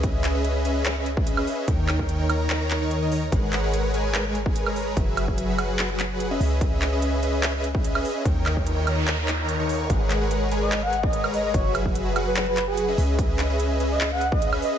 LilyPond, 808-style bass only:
\new Staff \with { instrumentName = "808-style bass" } { \clef bass \time 4/4 \key gis \minor \tempo 4 = 146 cis,2.~ cis,8 r8 | dis,1 | gis,,1 | fis,,2.~ fis,,8 cis,8~ |
cis,2.~ cis,8 r8 | dis,1 | gis,,1 | fis,,2.~ fis,,8 cis,8~ |
cis,2.~ cis,8 r8 | }